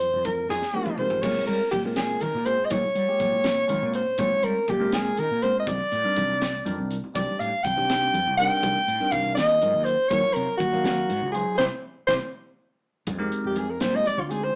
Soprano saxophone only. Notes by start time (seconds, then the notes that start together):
Already playing: C5
0.25 A#4
0.50 G#4
0.99 C5
1.22 C#5
1.47 A#4
1.71 G4
1.96 G#4
2.21 A#4
2.46 C5
2.65 D#5
2.72 C#5
3.95 C5
4.19 C#5
4.44 A#4
4.70 G4
4.94 G#4
5.19 A#4
5.43 C5
5.60 D#5
5.68 D5
7.15 D5
7.39 F5
7.64 G5
8.38 G5
9.12 F5
9.35 D#5
9.85 C5
10.09 C#5
10.33 A#4
10.57 F#4
11.32 G#4
11.58 C5
12.07 C5
13.46 G4
13.58 G#4
13.70 A#4
13.81 C5
13.96 D#5
14.07 D5
14.20 F4
14.30 G#4
14.44 C5